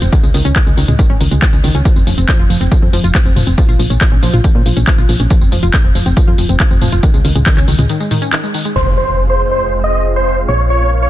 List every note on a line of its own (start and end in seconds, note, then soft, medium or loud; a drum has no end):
0.02 0.09 F1 loud
0.02 0.12 C4 medium
0.02 closed hi-hat medium
0.02 tambourine soft
0.13 0.23 D#3 medium
0.13 kick loud
0.13 closed hi-hat medium
0.13 tambourine soft
0.23 0.30 C#2 medium
0.23 0.31 G#3 medium
0.23 tambourine soft
0.34 0.41 C#2 loud
0.34 0.44 D#3 loud
0.34 open hi-hat loud
0.34 tambourine medium
0.45 0.52 C#2 medium
0.45 0.52 C#4 loud
0.45 closed hi-hat medium
0.45 tambourine soft
0.56 0.63 D#3 medium
0.56 kick loud
0.56 clap loud
0.56 closed hi-hat medium
0.56 tambourine soft
0.67 0.74 C#2 medium
0.67 0.77 G#3 medium
0.67 tambourine soft
0.77 0.84 C#2 loud
0.77 0.88 D#3 medium
0.77 open hi-hat loud
0.77 tambourine medium
0.88 0.95 C#2 medium
0.88 0.95 G#3 medium
0.88 closed hi-hat medium
0.88 mid tom medium
0.88 tambourine soft
0.99 1.09 D#3 loud
0.99 kick loud
0.99 closed hi-hat medium
0.99 tambourine soft
1.10 1.17 G#1 medium
1.10 1.17 C#4 medium
1.21 1.28 C#2 medium
1.21 1.28 D#3 medium
1.21 open hi-hat loud
1.21 tambourine medium
1.31 1.38 C#2 loud
1.31 1.42 G#3 medium
1.31 closed hi-hat medium
1.31 tambourine soft
1.42 1.52 D#3 medium
1.42 kick loud
1.42 clap loud
1.42 closed hi-hat medium
1.42 tambourine soft
1.53 1.60 C#2 medium
1.53 1.60 G#3 medium
1.53 tambourine soft
1.64 1.71 C#2 loud
1.64 1.74 D#3 loud
1.64 open hi-hat loud
1.64 tambourine medium
1.75 1.81 C#2 medium
1.75 1.82 C#4 loud
1.75 closed hi-hat medium
1.75 tambourine soft
1.85 1.92 F3 medium
1.85 kick loud
1.85 closed hi-hat medium
1.85 tambourine soft
1.96 2.03 F1 medium
1.96 2.06 C4 medium
1.96 tambourine soft
2.07 2.14 F1 loud
2.07 2.17 F3 medium
2.07 open hi-hat loud
2.07 tambourine medium
2.18 2.25 F1 medium
2.18 2.25 C4 medium
2.18 closed hi-hat medium
2.18 tambourine soft
2.28 2.39 F3 loud
2.28 kick loud
2.28 clap loud
2.28 closed hi-hat medium
2.28 tambourine soft
2.39 2.46 F1 medium
2.39 2.46 F4 loud
2.50 2.57 F1 loud
2.50 2.57 F3 medium
2.50 open hi-hat loud
2.50 tambourine medium
2.61 2.68 F1 medium
2.61 2.71 C4 medium
2.61 closed hi-hat medium
2.61 tambourine soft
2.72 2.82 F3 medium
2.72 kick loud
2.72 closed hi-hat medium
2.72 tambourine soft
2.82 2.89 F2 medium
2.82 2.89 C4 medium
2.93 3.00 F1 loud
2.93 3.03 F3 loud
2.93 open hi-hat loud
2.93 tambourine medium
3.04 3.11 F1 medium
3.04 3.11 F4 loud
3.04 closed hi-hat medium
3.04 tambourine soft
3.15 3.22 F3 medium
3.15 kick loud
3.15 clap loud
3.15 closed hi-hat medium
3.15 tambourine soft
3.25 3.32 F1 medium
3.25 3.36 C4 medium
3.25 tambourine soft
3.36 3.43 F1 loud
3.36 3.47 F3 medium
3.36 open hi-hat loud
3.36 mid tom medium
3.36 tambourine medium
3.47 3.54 F1 loud
3.47 3.54 C4 medium
3.47 closed hi-hat medium
3.47 tambourine soft
3.58 3.68 F3 loud
3.58 kick loud
3.58 closed hi-hat medium
3.58 tambourine soft
3.69 3.76 A#1 medium
3.69 3.76 F4 loud
3.69 tambourine soft
3.79 3.86 A#1 loud
3.79 3.87 F3 medium
3.79 open hi-hat loud
3.79 tambourine medium
3.90 3.97 A#1 medium
3.90 4.00 C#4 medium
3.90 closed hi-hat medium
3.90 tambourine soft
4.01 4.11 F3 medium
4.01 kick loud
4.01 clap loud
4.01 closed hi-hat medium
4.01 tambourine soft
4.12 4.19 A#1 medium
4.12 4.19 C#4 medium
4.23 4.30 A#1 loud
4.23 4.33 F3 loud
4.23 open hi-hat loud
4.23 tambourine medium
4.33 4.40 A#1 medium
4.33 4.41 F4 loud
4.33 closed hi-hat medium
4.33 mid tom medium
4.33 tambourine soft
4.44 4.51 F3 medium
4.44 kick loud
4.44 closed hi-hat medium
4.44 tambourine soft
4.55 4.62 A#2 medium
4.55 4.65 C#4 medium
4.66 4.73 A#1 loud
4.66 4.76 F3 medium
4.66 open hi-hat loud
4.66 tambourine medium
4.77 4.84 A#1 loud
4.77 4.84 C#4 medium
4.77 closed hi-hat medium
4.77 tambourine soft
4.87 4.98 F3 loud
4.87 kick loud
4.87 clap loud
4.87 closed hi-hat medium
4.87 tambourine soft
4.98 5.05 A#1 medium
4.98 5.05 F4 loud
4.98 tambourine soft
5.09 5.16 A#1 loud
5.09 5.16 F3 medium
5.09 open hi-hat loud
5.09 tambourine medium
5.20 5.27 A#1 medium
5.20 5.30 C#4 medium
5.20 closed hi-hat medium
5.20 tambourine soft
5.30 5.41 F3 medium
5.30 kick loud
5.30 closed hi-hat medium
5.30 tambourine soft
5.41 5.48 F1 medium
5.41 5.48 C4 medium
5.41 tambourine soft
5.52 5.59 F1 loud
5.52 5.62 F3 medium
5.52 open hi-hat loud
5.52 tambourine medium
5.63 5.70 F1 medium
5.63 5.70 F4 loud
5.63 closed hi-hat medium
5.63 tambourine soft
5.74 5.81 F3 medium
5.74 kick loud
5.74 clap loud
5.74 closed hi-hat medium
5.74 tambourine soft
5.84 5.91 F1 medium
5.84 5.95 C4 medium
5.95 6.02 F1 loud
5.95 6.06 F3 medium
5.95 open hi-hat medium
5.95 tambourine medium
6.06 6.13 F1 medium
6.06 6.13 C4 medium
6.06 closed hi-hat medium
6.06 tambourine soft
6.17 6.27 F3 loud
6.17 kick loud
6.17 closed hi-hat medium
6.17 tambourine soft
6.28 6.35 F2 medium
6.28 6.35 F4 loud
6.38 6.45 F1 loud
6.38 6.46 F3 medium
6.38 open hi-hat loud
6.38 tambourine medium
6.49 6.56 F1 medium
6.49 6.60 C4 medium
6.49 closed hi-hat medium
6.49 tambourine soft
6.60 6.70 F3 medium
6.60 kick loud
6.60 clap loud
6.60 closed hi-hat medium
6.60 tambourine soft
6.71 6.78 F1 medium
6.71 6.78 C4 medium
6.71 tambourine soft
6.81 6.89 F1 loud
6.81 6.92 F3 loud
6.81 open hi-hat loud
6.81 mid tom medium
6.81 tambourine medium
6.92 6.99 F1 medium
6.92 7.00 F4 loud
6.92 closed hi-hat medium
6.92 tambourine soft
7.03 7.10 D#3 medium
7.03 kick loud
7.03 closed hi-hat medium
7.03 tambourine soft
7.14 7.21 C#2 medium
7.14 7.24 G#3 medium
7.14 tambourine soft
7.25 7.32 C#2 loud
7.25 7.35 D#3 medium
7.25 open hi-hat loud
7.25 tambourine medium
7.35 7.42 C#2 medium
7.35 7.43 G#3 medium
7.35 closed hi-hat medium
7.35 mid tom medium
7.35 tambourine soft
7.46 7.57 D#3 loud
7.46 kick loud
7.46 clap loud
7.46 closed hi-hat medium
7.46 tambourine soft
7.57 7.64 C#2 medium
7.57 7.64 C#4 loud
7.57 clap soft
7.57 tambourine soft
7.68 7.75 C#2 loud
7.68 7.75 D#3 medium
7.68 open hi-hat loud
7.68 tambourine medium
7.79 7.86 C#2 medium
7.79 7.89 G#3 medium
7.79 closed hi-hat medium
7.79 mid tom medium
7.79 tambourine soft
7.89 8.00 D#3 medium
7.89 closed hi-hat medium
7.89 tambourine soft
8.00 8.07 G#3 medium
8.00 tambourine soft
8.11 8.21 D#3 loud
8.11 open hi-hat loud
8.11 mid tom medium
8.11 tambourine medium
8.22 8.29 C#4 loud
8.22 closed hi-hat medium
8.22 tambourine soft
8.33 8.40 D#3 medium
8.33 clap loud
8.33 closed hi-hat medium
8.33 tambourine soft
8.43 8.54 G#3 medium
8.43 tambourine soft
8.54 8.65 D#3 medium
8.54 open hi-hat loud
8.54 tambourine medium
8.65 8.72 G#3 medium
8.65 closed hi-hat medium
8.65 tambourine soft
8.76 10.46 F1 medium
8.76 10.47 G#3 medium
8.76 10.47 C4 medium
8.76 11.10 F4 medium
8.76 8.89 C5 medium
8.76 10.47 C5 medium
8.76 11.10 F5 medium
8.76 impact medium
8.97 9.17 C5 medium
9.30 9.43 C5 medium
9.51 9.71 C5 medium
9.84 10.04 D#5 medium
10.16 10.36 C5 loud
10.48 11.10 A#1 medium
10.48 11.10 A#3 medium
10.48 11.10 C#4 medium
10.48 10.62 C#5 medium
10.48 11.10 C#5 medium
10.70 10.90 C#5 medium
11.02 11.10 C#5 medium